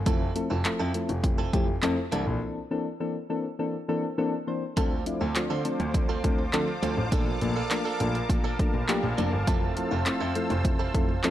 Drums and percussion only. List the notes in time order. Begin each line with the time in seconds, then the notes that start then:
0.06 kick, closed hi-hat
0.36 closed hi-hat
0.65 clap, closed hi-hat
0.94 closed hi-hat
1.09 closed hi-hat
1.24 kick, closed hi-hat
1.53 kick, closed hi-hat
1.82 clap, closed hi-hat
2.12 closed hi-hat
4.77 kick, closed hi-hat
5.06 closed hi-hat
5.35 clap, closed hi-hat
5.65 closed hi-hat
5.80 closed hi-hat
5.94 kick, closed hi-hat
6.24 kick, closed hi-hat
6.53 clap, closed hi-hat
6.83 closed hi-hat
7.12 kick, closed hi-hat
7.41 closed hi-hat
7.71 clap, closed hi-hat
8.00 closed hi-hat
8.15 closed hi-hat
8.29 kick, closed hi-hat
8.59 kick, closed hi-hat
8.88 clap, closed hi-hat
9.18 closed hi-hat
9.47 kick, closed hi-hat
9.77 closed hi-hat
10.06 clap, closed hi-hat
10.36 closed hi-hat
10.50 closed hi-hat
10.65 kick, closed hi-hat
10.95 kick, closed hi-hat
11.24 clap, closed hi-hat